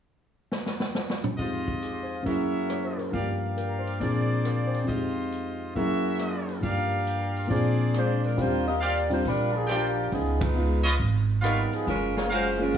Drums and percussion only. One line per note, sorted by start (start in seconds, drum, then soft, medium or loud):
0.52 snare medium
0.66 snare medium
0.80 snare medium
0.95 snare medium
1.10 snare medium
1.24 mid tom medium
1.39 kick soft
1.39 open hi-hat soft
1.68 kick soft
1.82 closed hi-hat soft
2.26 kick soft
2.26 open hi-hat soft
2.70 cross-stick medium
2.70 closed hi-hat soft
2.99 open hi-hat soft
3.13 kick soft
3.13 open hi-hat soft
3.58 closed hi-hat soft
3.87 open hi-hat soft
4.01 kick soft
4.01 open hi-hat soft
4.45 cross-stick medium
4.45 closed hi-hat soft
4.74 open hi-hat soft
4.89 kick soft
4.89 open hi-hat soft
5.32 closed hi-hat soft
5.76 kick soft
5.76 open hi-hat soft
6.19 cross-stick medium
6.19 closed hi-hat soft
6.49 open hi-hat soft
6.63 kick soft
6.63 open hi-hat soft
7.07 closed hi-hat soft
7.36 open hi-hat soft
7.51 kick soft
7.51 open hi-hat soft
7.94 cross-stick medium
7.94 closed hi-hat soft
8.24 open hi-hat soft
8.38 kick soft
8.38 open hi-hat soft
8.82 closed hi-hat soft
9.11 open hi-hat soft
9.25 kick soft
9.25 open hi-hat soft
9.69 cross-stick medium
9.69 closed hi-hat medium
10.12 kick soft
10.12 open hi-hat soft
10.41 kick medium
10.41 ride medium
10.86 open hi-hat soft
11.00 kick soft
11.00 open hi-hat soft
11.44 cross-stick medium
11.44 closed hi-hat medium
11.73 open hi-hat soft
11.87 kick soft
11.87 open hi-hat soft
12.17 snare soft
12.32 closed hi-hat soft
12.74 kick soft
12.74 open hi-hat soft